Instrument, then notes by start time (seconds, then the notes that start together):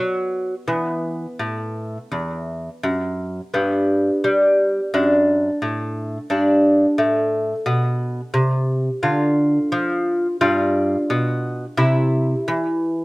lute
Already playing: F#3 B3
0.68 E3 B3
1.39 A2
2.12 E2
2.83 F#2
3.54 G2 B3
4.24 G3
4.94 F#2 D4
5.62 A2
6.30 G2 D4
6.98 A2
7.66 B2
8.34 C3
9.03 D3 F4
9.72 F3
10.41 G2 F4
11.10 B2
11.77 C3 E4
12.48 E3